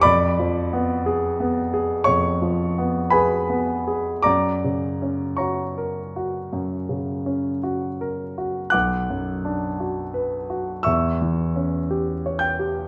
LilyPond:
\new Staff \with { instrumentName = "Grand piano" } { \time 4/4 \key fis \phrygian \tempo 4 = 56 << { <d'' ces''' d'''>2 <cis'' cis'''>4 <ces'' aes'' ces'''>4 | <d'' ais'' d'''>4 <cis'' ais'' cis'''>2 r4 | <fis'' d''' fis'''>2 <e'' cis''' e'''>4. <g'' g'''>8 | } \\ { \tuplet 3/2 { f,8 f8 ces'8 aes'8 ces'8 aes'8 f,8 f8 ces'8 aes'8 ces'8 aes'8 } | \tuplet 3/2 { fis,8 cis8 cis'8 fis'8 ais'8 fis'8 fis,8 cis8 cis'8 fis'8 ais'8 fis'8 } | \tuplet 3/2 { b,,8 fis,8 d'8 fis'8 b'8 fis'8 e,8 e8 cis'8 g'8 cis''8 g'8 } | } >> }